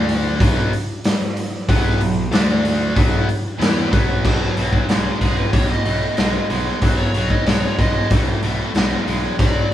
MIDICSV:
0, 0, Header, 1, 5, 480
1, 0, Start_track
1, 0, Tempo, 641711
1, 1260, Time_signature, 4, 2, 24, 8
1, 7285, End_track
2, 0, Start_track
2, 0, Title_t, "Electric slide guitar"
2, 0, Program_c, 0, 29
2, 3901, Note_on_c, 0, 68, 90
2, 4018, Note_off_c, 0, 68, 0
2, 4022, Note_on_c, 0, 71, 72
2, 4132, Note_off_c, 0, 71, 0
2, 4135, Note_on_c, 0, 73, 85
2, 4255, Note_off_c, 0, 73, 0
2, 4264, Note_on_c, 0, 75, 89
2, 5194, Note_off_c, 0, 75, 0
2, 5214, Note_on_c, 0, 73, 88
2, 5451, Note_off_c, 0, 73, 0
2, 5463, Note_on_c, 0, 75, 72
2, 5579, Note_off_c, 0, 75, 0
2, 5582, Note_on_c, 0, 73, 86
2, 5815, Note_off_c, 0, 73, 0
2, 5823, Note_on_c, 0, 75, 89
2, 6055, Note_off_c, 0, 75, 0
2, 7033, Note_on_c, 0, 74, 87
2, 7285, Note_off_c, 0, 74, 0
2, 7285, End_track
3, 0, Start_track
3, 0, Title_t, "Distorted electric guitar"
3, 0, Program_c, 1, 30
3, 0, Note_on_c, 1, 50, 82
3, 0, Note_on_c, 1, 57, 83
3, 0, Note_on_c, 1, 62, 92
3, 291, Note_off_c, 1, 50, 0
3, 296, Note_off_c, 1, 57, 0
3, 297, Note_on_c, 1, 47, 91
3, 298, Note_off_c, 1, 62, 0
3, 304, Note_on_c, 1, 54, 97
3, 306, Note_on_c, 1, 59, 105
3, 531, Note_off_c, 1, 47, 0
3, 534, Note_off_c, 1, 54, 0
3, 535, Note_off_c, 1, 59, 0
3, 1261, Note_on_c, 1, 47, 90
3, 1265, Note_on_c, 1, 54, 94
3, 1270, Note_on_c, 1, 59, 106
3, 1486, Note_off_c, 1, 47, 0
3, 1488, Note_off_c, 1, 54, 0
3, 1495, Note_on_c, 1, 47, 60
3, 1497, Note_on_c, 1, 54, 64
3, 1498, Note_off_c, 1, 59, 0
3, 1690, Note_off_c, 1, 47, 0
3, 1690, Note_off_c, 1, 54, 0
3, 1731, Note_on_c, 1, 50, 81
3, 1736, Note_on_c, 1, 57, 87
3, 1743, Note_on_c, 1, 62, 89
3, 2208, Note_off_c, 1, 50, 0
3, 2211, Note_off_c, 1, 57, 0
3, 2213, Note_on_c, 1, 47, 92
3, 2215, Note_off_c, 1, 62, 0
3, 2216, Note_on_c, 1, 54, 90
3, 2223, Note_on_c, 1, 59, 93
3, 2450, Note_off_c, 1, 47, 0
3, 2451, Note_off_c, 1, 54, 0
3, 2455, Note_off_c, 1, 59, 0
3, 2685, Note_on_c, 1, 52, 80
3, 2691, Note_on_c, 1, 59, 101
3, 2699, Note_on_c, 1, 64, 98
3, 2920, Note_off_c, 1, 52, 0
3, 2923, Note_on_c, 1, 47, 84
3, 2927, Note_off_c, 1, 59, 0
3, 2930, Note_on_c, 1, 54, 92
3, 2933, Note_off_c, 1, 64, 0
3, 2936, Note_on_c, 1, 59, 93
3, 3165, Note_off_c, 1, 47, 0
3, 3168, Note_off_c, 1, 54, 0
3, 3172, Note_off_c, 1, 59, 0
3, 3176, Note_on_c, 1, 47, 83
3, 3181, Note_on_c, 1, 54, 86
3, 3395, Note_off_c, 1, 47, 0
3, 3397, Note_off_c, 1, 54, 0
3, 3416, Note_on_c, 1, 47, 58
3, 3419, Note_on_c, 1, 54, 67
3, 3635, Note_off_c, 1, 47, 0
3, 3636, Note_off_c, 1, 54, 0
3, 3653, Note_on_c, 1, 47, 72
3, 3657, Note_on_c, 1, 56, 80
3, 3873, Note_off_c, 1, 47, 0
3, 3876, Note_off_c, 1, 56, 0
3, 3902, Note_on_c, 1, 47, 69
3, 3902, Note_on_c, 1, 56, 81
3, 4118, Note_off_c, 1, 47, 0
3, 4118, Note_off_c, 1, 56, 0
3, 4134, Note_on_c, 1, 47, 77
3, 4134, Note_on_c, 1, 57, 74
3, 4354, Note_off_c, 1, 47, 0
3, 4354, Note_off_c, 1, 57, 0
3, 4377, Note_on_c, 1, 47, 74
3, 4382, Note_on_c, 1, 57, 73
3, 4596, Note_off_c, 1, 47, 0
3, 4598, Note_off_c, 1, 57, 0
3, 4612, Note_on_c, 1, 47, 75
3, 4618, Note_on_c, 1, 56, 86
3, 4833, Note_off_c, 1, 47, 0
3, 4836, Note_off_c, 1, 56, 0
3, 4860, Note_on_c, 1, 47, 73
3, 4860, Note_on_c, 1, 56, 73
3, 5077, Note_off_c, 1, 47, 0
3, 5077, Note_off_c, 1, 56, 0
3, 5098, Note_on_c, 1, 47, 81
3, 5100, Note_on_c, 1, 54, 88
3, 5316, Note_off_c, 1, 47, 0
3, 5317, Note_off_c, 1, 54, 0
3, 5344, Note_on_c, 1, 47, 66
3, 5349, Note_on_c, 1, 54, 76
3, 5559, Note_off_c, 1, 47, 0
3, 5561, Note_off_c, 1, 54, 0
3, 5580, Note_on_c, 1, 47, 73
3, 5582, Note_on_c, 1, 56, 85
3, 5797, Note_off_c, 1, 47, 0
3, 5798, Note_off_c, 1, 56, 0
3, 5825, Note_on_c, 1, 47, 60
3, 5833, Note_on_c, 1, 56, 82
3, 6039, Note_off_c, 1, 47, 0
3, 6043, Note_off_c, 1, 56, 0
3, 6072, Note_on_c, 1, 47, 71
3, 6075, Note_on_c, 1, 57, 83
3, 6282, Note_off_c, 1, 47, 0
3, 6284, Note_off_c, 1, 57, 0
3, 6304, Note_on_c, 1, 47, 71
3, 6312, Note_on_c, 1, 57, 75
3, 6518, Note_off_c, 1, 47, 0
3, 6522, Note_off_c, 1, 57, 0
3, 6547, Note_on_c, 1, 47, 83
3, 6552, Note_on_c, 1, 56, 93
3, 6760, Note_off_c, 1, 47, 0
3, 6762, Note_off_c, 1, 56, 0
3, 6783, Note_on_c, 1, 47, 67
3, 6785, Note_on_c, 1, 56, 80
3, 6997, Note_off_c, 1, 47, 0
3, 6998, Note_off_c, 1, 56, 0
3, 7022, Note_on_c, 1, 47, 80
3, 7024, Note_on_c, 1, 54, 86
3, 7236, Note_off_c, 1, 47, 0
3, 7237, Note_off_c, 1, 54, 0
3, 7285, End_track
4, 0, Start_track
4, 0, Title_t, "Picked electric bass"
4, 0, Program_c, 2, 34
4, 0, Note_on_c, 2, 38, 96
4, 264, Note_off_c, 2, 38, 0
4, 297, Note_on_c, 2, 35, 94
4, 521, Note_off_c, 2, 35, 0
4, 1262, Note_on_c, 2, 35, 94
4, 1484, Note_off_c, 2, 35, 0
4, 1502, Note_on_c, 2, 35, 79
4, 1724, Note_off_c, 2, 35, 0
4, 1731, Note_on_c, 2, 38, 97
4, 2186, Note_off_c, 2, 38, 0
4, 2215, Note_on_c, 2, 35, 91
4, 2441, Note_off_c, 2, 35, 0
4, 2690, Note_on_c, 2, 40, 90
4, 2919, Note_off_c, 2, 40, 0
4, 2938, Note_on_c, 2, 35, 82
4, 3163, Note_off_c, 2, 35, 0
4, 3176, Note_on_c, 2, 35, 81
4, 3321, Note_off_c, 2, 35, 0
4, 3413, Note_on_c, 2, 35, 84
4, 3559, Note_off_c, 2, 35, 0
4, 3651, Note_on_c, 2, 35, 81
4, 3798, Note_off_c, 2, 35, 0
4, 3898, Note_on_c, 2, 35, 74
4, 4043, Note_off_c, 2, 35, 0
4, 4136, Note_on_c, 2, 35, 82
4, 4282, Note_off_c, 2, 35, 0
4, 4374, Note_on_c, 2, 35, 78
4, 4520, Note_off_c, 2, 35, 0
4, 4624, Note_on_c, 2, 35, 80
4, 4768, Note_off_c, 2, 35, 0
4, 4861, Note_on_c, 2, 35, 81
4, 5005, Note_off_c, 2, 35, 0
4, 5101, Note_on_c, 2, 35, 83
4, 5245, Note_off_c, 2, 35, 0
4, 5336, Note_on_c, 2, 35, 84
4, 5482, Note_off_c, 2, 35, 0
4, 5569, Note_on_c, 2, 35, 83
4, 5717, Note_off_c, 2, 35, 0
4, 5821, Note_on_c, 2, 35, 72
4, 5965, Note_off_c, 2, 35, 0
4, 6063, Note_on_c, 2, 35, 83
4, 6206, Note_off_c, 2, 35, 0
4, 6295, Note_on_c, 2, 35, 75
4, 6441, Note_off_c, 2, 35, 0
4, 6535, Note_on_c, 2, 35, 83
4, 6680, Note_off_c, 2, 35, 0
4, 6780, Note_on_c, 2, 35, 85
4, 6924, Note_off_c, 2, 35, 0
4, 7025, Note_on_c, 2, 35, 85
4, 7167, Note_off_c, 2, 35, 0
4, 7262, Note_on_c, 2, 35, 91
4, 7285, Note_off_c, 2, 35, 0
4, 7285, End_track
5, 0, Start_track
5, 0, Title_t, "Drums"
5, 66, Note_on_c, 9, 46, 54
5, 141, Note_off_c, 9, 46, 0
5, 302, Note_on_c, 9, 36, 107
5, 309, Note_on_c, 9, 46, 76
5, 376, Note_off_c, 9, 36, 0
5, 384, Note_off_c, 9, 46, 0
5, 546, Note_on_c, 9, 46, 61
5, 621, Note_off_c, 9, 46, 0
5, 781, Note_on_c, 9, 46, 81
5, 789, Note_on_c, 9, 38, 103
5, 855, Note_off_c, 9, 46, 0
5, 864, Note_off_c, 9, 38, 0
5, 1023, Note_on_c, 9, 46, 61
5, 1097, Note_off_c, 9, 46, 0
5, 1262, Note_on_c, 9, 36, 101
5, 1265, Note_on_c, 9, 46, 79
5, 1337, Note_off_c, 9, 36, 0
5, 1340, Note_off_c, 9, 46, 0
5, 1502, Note_on_c, 9, 46, 61
5, 1577, Note_off_c, 9, 46, 0
5, 1739, Note_on_c, 9, 46, 72
5, 1747, Note_on_c, 9, 38, 108
5, 1814, Note_off_c, 9, 46, 0
5, 1822, Note_off_c, 9, 38, 0
5, 1981, Note_on_c, 9, 46, 57
5, 2056, Note_off_c, 9, 46, 0
5, 2218, Note_on_c, 9, 36, 106
5, 2220, Note_on_c, 9, 46, 73
5, 2293, Note_off_c, 9, 36, 0
5, 2295, Note_off_c, 9, 46, 0
5, 2460, Note_on_c, 9, 46, 55
5, 2535, Note_off_c, 9, 46, 0
5, 2703, Note_on_c, 9, 46, 69
5, 2711, Note_on_c, 9, 38, 105
5, 2778, Note_off_c, 9, 46, 0
5, 2786, Note_off_c, 9, 38, 0
5, 2939, Note_on_c, 9, 36, 104
5, 2943, Note_on_c, 9, 46, 53
5, 3013, Note_off_c, 9, 36, 0
5, 3018, Note_off_c, 9, 46, 0
5, 3177, Note_on_c, 9, 36, 106
5, 3180, Note_on_c, 9, 49, 102
5, 3251, Note_off_c, 9, 36, 0
5, 3255, Note_off_c, 9, 49, 0
5, 3417, Note_on_c, 9, 46, 54
5, 3492, Note_off_c, 9, 46, 0
5, 3535, Note_on_c, 9, 36, 80
5, 3610, Note_off_c, 9, 36, 0
5, 3656, Note_on_c, 9, 46, 68
5, 3664, Note_on_c, 9, 38, 104
5, 3731, Note_off_c, 9, 46, 0
5, 3739, Note_off_c, 9, 38, 0
5, 3899, Note_on_c, 9, 36, 78
5, 3901, Note_on_c, 9, 46, 54
5, 3973, Note_off_c, 9, 36, 0
5, 3975, Note_off_c, 9, 46, 0
5, 4138, Note_on_c, 9, 36, 105
5, 4138, Note_on_c, 9, 46, 76
5, 4213, Note_off_c, 9, 36, 0
5, 4213, Note_off_c, 9, 46, 0
5, 4379, Note_on_c, 9, 46, 56
5, 4454, Note_off_c, 9, 46, 0
5, 4615, Note_on_c, 9, 46, 68
5, 4623, Note_on_c, 9, 38, 98
5, 4689, Note_off_c, 9, 46, 0
5, 4698, Note_off_c, 9, 38, 0
5, 4861, Note_on_c, 9, 46, 51
5, 4936, Note_off_c, 9, 46, 0
5, 5098, Note_on_c, 9, 46, 76
5, 5102, Note_on_c, 9, 36, 103
5, 5173, Note_off_c, 9, 46, 0
5, 5177, Note_off_c, 9, 36, 0
5, 5343, Note_on_c, 9, 46, 57
5, 5418, Note_off_c, 9, 46, 0
5, 5463, Note_on_c, 9, 36, 80
5, 5538, Note_off_c, 9, 36, 0
5, 5583, Note_on_c, 9, 46, 70
5, 5591, Note_on_c, 9, 38, 99
5, 5658, Note_off_c, 9, 46, 0
5, 5666, Note_off_c, 9, 38, 0
5, 5824, Note_on_c, 9, 36, 81
5, 5824, Note_on_c, 9, 46, 51
5, 5899, Note_off_c, 9, 36, 0
5, 5899, Note_off_c, 9, 46, 0
5, 6060, Note_on_c, 9, 46, 68
5, 6065, Note_on_c, 9, 36, 101
5, 6135, Note_off_c, 9, 46, 0
5, 6140, Note_off_c, 9, 36, 0
5, 6303, Note_on_c, 9, 46, 50
5, 6377, Note_off_c, 9, 46, 0
5, 6543, Note_on_c, 9, 46, 66
5, 6551, Note_on_c, 9, 38, 108
5, 6618, Note_off_c, 9, 46, 0
5, 6626, Note_off_c, 9, 38, 0
5, 6788, Note_on_c, 9, 46, 50
5, 6863, Note_off_c, 9, 46, 0
5, 7025, Note_on_c, 9, 36, 108
5, 7025, Note_on_c, 9, 46, 70
5, 7100, Note_off_c, 9, 36, 0
5, 7100, Note_off_c, 9, 46, 0
5, 7285, End_track
0, 0, End_of_file